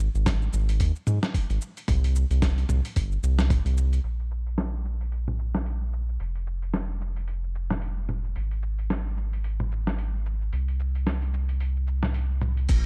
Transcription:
0.14 0.48 G#1 medium
0.14 shaker soft
0.26 kick medium
0.26 snare medium
0.26 mid tom medium
0.26 open hi-hat medium
0.26 shaker soft
0.42 shaker soft
0.53 0.82 G#1 loud
0.53 shaker medium
0.69 open hi-hat soft
0.69 shaker soft
0.80 0.92 D#2 loud
0.80 kick loud
0.80 open hi-hat medium
0.80 shaker soft
0.96 shaker soft
1.07 1.19 G#2 medium
1.07 mid tom medium
1.07 shaker medium
1.23 snare medium
1.23 shaker soft
1.34 kick loud
1.34 open hi-hat medium
1.34 shaker soft
1.50 1.58 G#1 medium
1.50 open hi-hat soft
1.50 shaker soft
1.61 shaker medium
1.77 open hi-hat soft
1.77 shaker soft
1.88 2.25 C2 loud
1.88 kick medium
1.88 mid tom medium
1.88 open hi-hat medium
1.88 shaker soft
2.04 open hi-hat soft
2.04 shaker soft
2.16 shaker medium
2.30 2.65 C2 medium
2.30 open hi-hat soft
2.30 shaker soft
2.42 kick loud
2.42 snare medium
2.42 open hi-hat medium
2.42 shaker soft
2.58 open hi-hat soft
2.58 shaker soft
2.69 2.81 C2 loud
2.69 mid tom medium
2.69 shaker medium
2.85 open hi-hat soft
2.85 shaker soft
2.96 3.18 G1 medium
2.96 kick loud
2.96 open hi-hat medium
2.96 shaker soft
3.12 shaker soft
3.23 3.60 C2 medium
3.23 shaker medium
3.39 snare medium
3.39 open hi-hat soft
3.39 shaker soft
3.50 kick loud
3.50 mid tom medium
3.50 open hi-hat medium
3.50 shaker soft
3.65 4.00 C2 medium
3.65 open hi-hat soft
3.65 shaker soft
3.77 shaker medium
3.93 open hi-hat soft
3.93 shaker soft
4.03 6.18 A#1 medium
4.03 open hi-hat medium
4.03 shaker soft
4.20 open hi-hat soft
4.20 shaker soft
4.31 shaker medium
4.47 open hi-hat soft
4.47 shaker soft
4.58 snare medium
4.58 open hi-hat medium
4.58 shaker soft
4.74 shaker soft
4.85 shaker medium
5.01 open hi-hat soft
5.01 shaker soft
5.12 open hi-hat medium
5.12 shaker soft
5.28 mid tom medium
5.28 shaker soft
5.39 shaker medium
5.55 snare medium
5.55 open hi-hat soft
5.66 open hi-hat medium
5.66 shaker soft
5.82 shaker soft
5.93 shaker medium
6.09 shaker soft
6.20 8.34 F1 medium
6.20 open hi-hat medium
6.20 shaker soft
6.35 open hi-hat soft
6.35 shaker soft
6.47 shaker medium
6.62 open hi-hat soft
6.62 shaker soft
6.74 snare medium
6.74 open hi-hat medium
6.74 shaker soft
6.90 shaker soft
7.01 shaker medium
7.16 open hi-hat soft
7.16 shaker soft
7.28 open hi-hat medium
7.28 shaker soft
7.43 shaker soft
7.55 shaker medium
7.71 snare medium
7.71 mid tom medium
7.71 open hi-hat soft
7.71 shaker soft
7.82 open hi-hat medium
7.82 shaker soft
7.97 shaker soft
8.09 mid tom medium
8.09 shaker medium
8.24 shaker soft
8.36 10.51 G#1 medium
8.36 open hi-hat medium
8.36 shaker soft
8.51 open hi-hat soft
8.51 shaker soft
8.62 shaker medium
8.78 open hi-hat soft
8.78 shaker soft
8.90 snare medium
8.90 open hi-hat medium
8.90 shaker soft
9.06 shaker soft
9.17 shaker medium
9.33 open hi-hat soft
9.33 shaker soft
9.44 open hi-hat medium
9.44 shaker soft
9.60 mid tom medium
9.60 shaker soft
9.72 shaker medium
9.87 snare medium
9.87 open hi-hat soft
9.87 shaker soft
9.98 open hi-hat medium
9.98 shaker soft
10.14 shaker soft
10.26 shaker medium
10.41 shaker soft
10.53 12.67 C2 medium
10.53 open hi-hat medium
10.53 shaker soft
10.68 open hi-hat soft
10.68 shaker soft
10.80 shaker medium
10.95 open hi-hat soft
10.95 shaker soft
11.07 snare medium
11.07 open hi-hat medium
11.07 shaker soft
11.22 open hi-hat soft
11.22 shaker soft
11.34 shaker medium
11.49 open hi-hat soft
11.49 shaker soft
11.60 open hi-hat medium
11.60 shaker soft
11.76 shaker soft
11.87 shaker medium
12.03 snare medium
12.03 mid tom medium
12.03 open hi-hat soft
12.03 shaker soft
12.14 open hi-hat medium
12.14 shaker soft
12.30 shaker soft
12.41 mid tom medium
12.41 shaker medium
12.57 open hi-hat soft
12.57 shaker soft
12.69 12.86 A#1 loud
12.69 kick medium
12.69 open hi-hat medium
12.69 crash loud
12.69 shaker soft

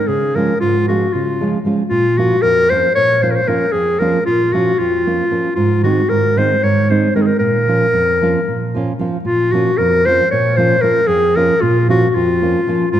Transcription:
0.08 0.48 C#3 medium
0.08 0.37 G#4 medium
0.35 0.52 F3 medium
0.35 0.52 G#3 medium
0.35 0.52 C#4 medium
0.35 0.53 F4 medium
0.35 0.60 A#4 medium
0.60 1.01 G#2 medium
0.60 0.87 F4 medium
0.88 1.05 F3 medium
0.88 1.05 G#3 medium
0.88 1.06 C#4 medium
0.88 1.06 F4 medium
0.88 1.15 F#4 medium
1.13 1.53 C#3 medium
1.13 1.64 F4 medium
1.40 1.57 F3 medium
1.40 1.57 G#3 medium
1.40 1.57 C#4 medium
1.40 1.58 F4 medium
1.65 1.81 F3 soft
1.65 1.82 G#3 medium
1.65 1.82 C#4 soft
1.65 1.82 F4 medium
1.89 2.31 A#2 medium
1.89 2.20 F4 loud
2.18 2.34 F3 soft
2.18 2.35 A#3 medium
2.18 2.35 C#4 medium
2.18 2.35 F4 medium
2.18 2.43 F#4 medium
2.42 2.84 F2 medium
2.42 2.71 A#4 loud
2.70 2.88 F3 soft
2.70 2.88 A#3 soft
2.70 2.88 C#4 medium
2.70 2.89 F4 medium
2.70 2.94 C5 medium
2.95 3.36 A#2 medium
2.95 3.24 C#5 loud
3.22 3.39 F3 medium
3.22 3.40 A#3 medium
3.22 3.40 C#4 soft
3.22 3.40 F4 medium
3.22 3.32 C5 medium
3.31 3.37 A#4 medium
3.35 3.49 C5 medium
3.47 3.64 F3 soft
3.47 3.65 A#3 soft
3.47 3.65 C#4 medium
3.47 3.65 F4 medium
3.47 3.73 A#4 medium
3.72 4.14 F2 medium
3.72 4.01 G#4 medium
3.99 4.18 F3 medium
3.99 4.18 A#3 medium
3.99 4.18 C#4 medium
3.99 4.18 F4 medium
3.99 4.25 A#4 medium
4.26 4.67 A#2 medium
4.26 4.55 F4 medium
4.53 4.71 F3 medium
4.53 4.71 A#3 soft
4.53 4.71 C#4 soft
4.53 4.72 F4 medium
4.53 4.80 F#4 medium
4.79 5.19 F2 soft
4.79 5.55 F4 medium
5.06 5.23 F3 medium
5.06 5.23 A#3 soft
5.06 5.23 C#4 soft
5.06 5.24 F4 medium
5.31 5.48 F3 soft
5.31 5.48 A#3 medium
5.31 5.48 C#4 medium
5.31 5.49 F4 medium
5.55 5.97 G#2 medium
5.55 5.83 F4 medium
5.83 6.01 D#3 medium
5.83 6.01 G#3 medium
5.83 6.02 C4 medium
5.83 6.02 D#4 medium
5.83 6.11 F#4 medium
6.09 6.51 G#2 medium
6.09 6.39 A#4 medium
6.36 6.54 D#3 medium
6.36 6.54 G#3 medium
6.36 6.55 C4 medium
6.36 6.55 D#4 medium
6.36 6.65 C5 medium
6.63 7.03 G#2 soft
6.63 6.91 C#5 medium
6.89 7.07 D#3 medium
6.89 7.07 G#3 medium
6.89 7.07 C4 soft
6.89 7.07 D#4 medium
6.89 7.15 C5 medium
7.14 7.31 D#3 medium
7.14 7.32 G#3 medium
7.14 7.32 C4 soft
7.14 7.32 D#4 medium
7.14 7.23 A#4 medium
7.22 7.28 G#4 medium
7.26 7.38 A#4 medium
7.39 7.81 A#2 medium
7.39 8.95 A#4 loud
7.68 7.85 F3 medium
7.68 7.85 A#3 medium
7.68 7.86 C#4 medium
7.68 7.86 F4 medium
7.93 8.34 F2 medium
8.22 8.39 F3 medium
8.22 8.39 A#3 medium
8.22 8.39 C#4 medium
8.22 8.39 F4 medium
8.48 8.87 A#2 medium
8.75 8.91 F3 medium
8.75 8.91 A#3 medium
8.75 8.92 C#4 medium
8.75 8.92 F4 medium
8.99 9.16 F3 medium
8.99 9.16 A#3 soft
8.99 9.16 C#4 medium
8.99 9.17 F4 medium
9.24 9.65 A#2 medium
9.24 9.54 F4 medium
9.52 9.69 F3 medium
9.52 9.70 A#3 medium
9.52 9.70 C#4 medium
9.52 9.70 F4 medium
9.52 9.79 F#4 medium
9.78 10.19 F2 medium
9.78 10.07 A#4 loud
10.05 10.23 F3 medium
10.05 10.23 A#3 soft
10.05 10.24 C#4 medium
10.05 10.24 F4 medium
10.05 10.30 C5 loud
10.31 10.71 A#2 medium
10.31 10.58 C#5 medium
10.57 10.74 F3 medium
10.57 10.75 A#3 medium
10.57 10.75 C#4 medium
10.57 10.75 F4 medium
10.57 10.83 C5 medium
10.82 10.99 F3 medium
10.82 11.00 A#3 soft
10.82 11.00 C#4 medium
10.82 11.00 F4 medium
10.82 11.09 A#4 loud
11.07 11.49 F2 medium
11.07 11.37 G#4 loud
11.36 11.53 F3 medium
11.36 11.53 A#3 soft
11.36 11.53 C#4 medium
11.36 11.54 F4 medium
11.36 11.63 A#4 loud
11.62 12.03 A#2 medium
11.62 11.89 F4 medium
11.89 12.06 F3 medium
11.89 12.06 A#3 soft
11.89 12.06 C#4 medium
11.89 12.07 F4 medium
11.89 12.10 F#4 loud
12.10 12.16 F#4 medium
12.15 12.55 F2 medium
12.15 12.91 F4 medium
12.42 12.58 F3 medium
12.42 12.59 A#3 medium
12.42 12.59 C#4 soft
12.42 12.59 F4 medium
12.67 12.84 F3 medium
12.67 12.84 A#3 medium
12.67 12.84 C#4 medium
12.67 12.84 F4 medium
12.91 13.00 G#2 medium
12.91 13.00 F4 medium

